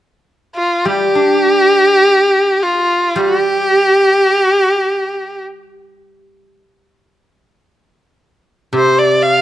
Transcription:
0, 0, Header, 1, 3, 480
1, 0, Start_track
1, 0, Tempo, 500000
1, 9039, End_track
2, 0, Start_track
2, 0, Title_t, "Erhu"
2, 0, Program_c, 0, 110
2, 530, Note_on_c, 0, 65, 64
2, 821, Note_on_c, 0, 67, 78
2, 835, Note_off_c, 0, 65, 0
2, 2520, Note_on_c, 0, 65, 67
2, 2534, Note_off_c, 0, 67, 0
2, 3076, Note_on_c, 0, 66, 81
2, 3090, Note_off_c, 0, 65, 0
2, 3258, Note_off_c, 0, 66, 0
2, 3258, Note_on_c, 0, 67, 81
2, 5207, Note_off_c, 0, 67, 0
2, 8430, Note_on_c, 0, 72, 69
2, 8630, Note_on_c, 0, 74, 65
2, 8645, Note_off_c, 0, 72, 0
2, 8854, Note_on_c, 0, 77, 72
2, 8868, Note_off_c, 0, 74, 0
2, 9039, Note_off_c, 0, 77, 0
2, 9039, End_track
3, 0, Start_track
3, 0, Title_t, "Guzheng"
3, 0, Program_c, 1, 107
3, 819, Note_on_c, 1, 55, 38
3, 1106, Note_on_c, 1, 62, 34
3, 3018, Note_off_c, 1, 55, 0
3, 3030, Note_on_c, 1, 55, 47
3, 3256, Note_off_c, 1, 62, 0
3, 6275, Note_off_c, 1, 55, 0
3, 8377, Note_on_c, 1, 48, 47
3, 9039, Note_off_c, 1, 48, 0
3, 9039, End_track
0, 0, End_of_file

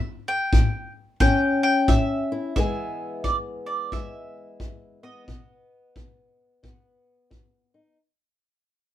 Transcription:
0, 0, Header, 1, 4, 480
1, 0, Start_track
1, 0, Tempo, 678733
1, 1810, Time_signature, 4, 2, 24, 8
1, 6322, End_track
2, 0, Start_track
2, 0, Title_t, "Mandolin"
2, 0, Program_c, 0, 25
2, 199, Note_on_c, 0, 79, 80
2, 646, Note_off_c, 0, 79, 0
2, 851, Note_on_c, 0, 79, 110
2, 1147, Note_off_c, 0, 79, 0
2, 1155, Note_on_c, 0, 79, 101
2, 1333, Note_on_c, 0, 76, 96
2, 1338, Note_off_c, 0, 79, 0
2, 1783, Note_off_c, 0, 76, 0
2, 1811, Note_on_c, 0, 76, 96
2, 2261, Note_off_c, 0, 76, 0
2, 2292, Note_on_c, 0, 74, 93
2, 2372, Note_off_c, 0, 74, 0
2, 2591, Note_on_c, 0, 74, 88
2, 2776, Note_off_c, 0, 74, 0
2, 2779, Note_on_c, 0, 76, 93
2, 3557, Note_off_c, 0, 76, 0
2, 3560, Note_on_c, 0, 75, 83
2, 5149, Note_off_c, 0, 75, 0
2, 6322, End_track
3, 0, Start_track
3, 0, Title_t, "Steel-string acoustic guitar"
3, 0, Program_c, 1, 25
3, 0, Note_on_c, 1, 45, 81
3, 336, Note_off_c, 1, 45, 0
3, 374, Note_on_c, 1, 45, 74
3, 816, Note_off_c, 1, 45, 0
3, 852, Note_on_c, 1, 45, 72
3, 859, Note_on_c, 1, 61, 63
3, 1294, Note_off_c, 1, 45, 0
3, 1335, Note_on_c, 1, 45, 73
3, 1639, Note_on_c, 1, 64, 60
3, 1776, Note_off_c, 1, 45, 0
3, 1792, Note_off_c, 1, 61, 0
3, 1793, Note_off_c, 1, 64, 0
3, 1813, Note_on_c, 1, 40, 78
3, 1818, Note_on_c, 1, 52, 67
3, 1823, Note_on_c, 1, 56, 62
3, 1829, Note_on_c, 1, 59, 68
3, 1831, Note_on_c, 1, 68, 74
3, 2255, Note_off_c, 1, 40, 0
3, 2296, Note_on_c, 1, 40, 77
3, 2736, Note_off_c, 1, 40, 0
3, 2770, Note_off_c, 1, 56, 0
3, 2772, Note_on_c, 1, 40, 72
3, 2778, Note_on_c, 1, 56, 57
3, 3215, Note_off_c, 1, 40, 0
3, 3254, Note_on_c, 1, 40, 74
3, 3555, Note_off_c, 1, 59, 0
3, 3558, Note_on_c, 1, 59, 58
3, 3696, Note_off_c, 1, 40, 0
3, 3718, Note_off_c, 1, 68, 0
3, 3732, Note_on_c, 1, 47, 85
3, 3734, Note_off_c, 1, 52, 0
3, 3734, Note_off_c, 1, 56, 0
3, 4175, Note_off_c, 1, 47, 0
3, 4218, Note_on_c, 1, 47, 68
3, 4658, Note_off_c, 1, 47, 0
3, 4687, Note_off_c, 1, 59, 0
3, 4688, Note_on_c, 1, 47, 68
3, 4696, Note_on_c, 1, 59, 56
3, 5134, Note_off_c, 1, 47, 0
3, 5166, Note_on_c, 1, 47, 70
3, 5475, Note_on_c, 1, 63, 62
3, 5614, Note_off_c, 1, 47, 0
3, 5633, Note_off_c, 1, 59, 0
3, 5633, Note_off_c, 1, 63, 0
3, 6322, End_track
4, 0, Start_track
4, 0, Title_t, "Drums"
4, 372, Note_on_c, 9, 36, 71
4, 443, Note_off_c, 9, 36, 0
4, 851, Note_on_c, 9, 36, 68
4, 922, Note_off_c, 9, 36, 0
4, 1330, Note_on_c, 9, 36, 73
4, 1401, Note_off_c, 9, 36, 0
4, 1811, Note_on_c, 9, 36, 72
4, 1882, Note_off_c, 9, 36, 0
4, 2292, Note_on_c, 9, 36, 68
4, 2363, Note_off_c, 9, 36, 0
4, 2773, Note_on_c, 9, 36, 67
4, 2844, Note_off_c, 9, 36, 0
4, 3252, Note_on_c, 9, 36, 72
4, 3323, Note_off_c, 9, 36, 0
4, 3733, Note_on_c, 9, 36, 66
4, 3804, Note_off_c, 9, 36, 0
4, 4213, Note_on_c, 9, 36, 67
4, 4284, Note_off_c, 9, 36, 0
4, 4693, Note_on_c, 9, 36, 66
4, 4764, Note_off_c, 9, 36, 0
4, 5172, Note_on_c, 9, 36, 72
4, 5242, Note_off_c, 9, 36, 0
4, 6322, End_track
0, 0, End_of_file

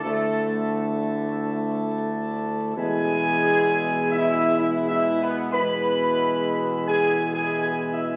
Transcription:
0, 0, Header, 1, 6, 480
1, 0, Start_track
1, 0, Tempo, 909091
1, 23, Time_signature, 3, 2, 24, 8
1, 4311, End_track
2, 0, Start_track
2, 0, Title_t, "Trumpet section"
2, 0, Program_c, 0, 61
2, 20, Note_on_c, 0, 69, 95
2, 484, Note_off_c, 0, 69, 0
2, 1465, Note_on_c, 0, 80, 126
2, 2159, Note_off_c, 0, 80, 0
2, 2170, Note_on_c, 0, 76, 107
2, 2398, Note_off_c, 0, 76, 0
2, 2415, Note_on_c, 0, 76, 93
2, 2489, Note_off_c, 0, 76, 0
2, 2575, Note_on_c, 0, 76, 98
2, 2733, Note_off_c, 0, 76, 0
2, 2749, Note_on_c, 0, 71, 91
2, 2823, Note_off_c, 0, 71, 0
2, 2918, Note_on_c, 0, 83, 119
2, 3610, Note_off_c, 0, 83, 0
2, 3631, Note_on_c, 0, 80, 108
2, 3851, Note_off_c, 0, 80, 0
2, 3872, Note_on_c, 0, 80, 98
2, 4016, Note_off_c, 0, 80, 0
2, 4024, Note_on_c, 0, 80, 98
2, 4095, Note_off_c, 0, 80, 0
2, 4187, Note_on_c, 0, 76, 84
2, 4258, Note_off_c, 0, 76, 0
2, 4311, End_track
3, 0, Start_track
3, 0, Title_t, "French horn section"
3, 0, Program_c, 1, 60
3, 22, Note_on_c, 1, 57, 118
3, 485, Note_off_c, 1, 57, 0
3, 1463, Note_on_c, 1, 68, 127
3, 2158, Note_off_c, 1, 68, 0
3, 2182, Note_on_c, 1, 64, 121
3, 2404, Note_off_c, 1, 64, 0
3, 2419, Note_on_c, 1, 64, 120
3, 2571, Note_off_c, 1, 64, 0
3, 2588, Note_on_c, 1, 64, 119
3, 2740, Note_off_c, 1, 64, 0
3, 2752, Note_on_c, 1, 59, 115
3, 2903, Note_off_c, 1, 59, 0
3, 2918, Note_on_c, 1, 71, 127
3, 3610, Note_off_c, 1, 71, 0
3, 3629, Note_on_c, 1, 68, 114
3, 3851, Note_off_c, 1, 68, 0
3, 3874, Note_on_c, 1, 68, 115
3, 4017, Note_off_c, 1, 68, 0
3, 4023, Note_on_c, 1, 68, 109
3, 4095, Note_off_c, 1, 68, 0
3, 4180, Note_on_c, 1, 64, 104
3, 4252, Note_off_c, 1, 64, 0
3, 4311, End_track
4, 0, Start_track
4, 0, Title_t, "Pipe organ"
4, 0, Program_c, 2, 19
4, 15, Note_on_c, 2, 50, 78
4, 17, Note_on_c, 2, 57, 76
4, 17, Note_on_c, 2, 64, 77
4, 18, Note_on_c, 2, 69, 74
4, 1441, Note_off_c, 2, 50, 0
4, 1442, Note_off_c, 2, 57, 0
4, 1442, Note_off_c, 2, 64, 0
4, 1443, Note_off_c, 2, 69, 0
4, 1464, Note_on_c, 2, 56, 78
4, 1465, Note_on_c, 2, 71, 83
4, 1466, Note_on_c, 2, 47, 80
4, 1466, Note_on_c, 2, 64, 79
4, 2892, Note_off_c, 2, 64, 0
4, 2901, Note_off_c, 2, 47, 0
4, 2902, Note_off_c, 2, 56, 0
4, 2904, Note_off_c, 2, 71, 0
4, 2912, Note_on_c, 2, 47, 75
4, 2912, Note_on_c, 2, 56, 78
4, 2913, Note_on_c, 2, 64, 72
4, 2914, Note_on_c, 2, 71, 74
4, 4311, Note_off_c, 2, 47, 0
4, 4311, Note_off_c, 2, 56, 0
4, 4311, Note_off_c, 2, 64, 0
4, 4311, Note_off_c, 2, 71, 0
4, 4311, End_track
5, 0, Start_track
5, 0, Title_t, "Trombone section"
5, 0, Program_c, 3, 61
5, 16, Note_on_c, 3, 57, 94
5, 18, Note_on_c, 3, 50, 84
5, 1370, Note_off_c, 3, 50, 0
5, 1370, Note_off_c, 3, 57, 0
5, 1460, Note_on_c, 3, 56, 95
5, 1466, Note_on_c, 3, 47, 92
5, 2889, Note_off_c, 3, 56, 0
5, 2892, Note_off_c, 3, 47, 0
5, 2912, Note_on_c, 3, 47, 88
5, 2914, Note_on_c, 3, 56, 88
5, 4311, Note_off_c, 3, 47, 0
5, 4311, Note_off_c, 3, 56, 0
5, 4311, End_track
6, 0, Start_track
6, 0, Title_t, "Tuba"
6, 0, Program_c, 4, 58
6, 23, Note_on_c, 4, 38, 94
6, 1445, Note_off_c, 4, 38, 0
6, 1464, Note_on_c, 4, 40, 106
6, 2742, Note_off_c, 4, 40, 0
6, 2912, Note_on_c, 4, 40, 92
6, 4311, Note_off_c, 4, 40, 0
6, 4311, End_track
0, 0, End_of_file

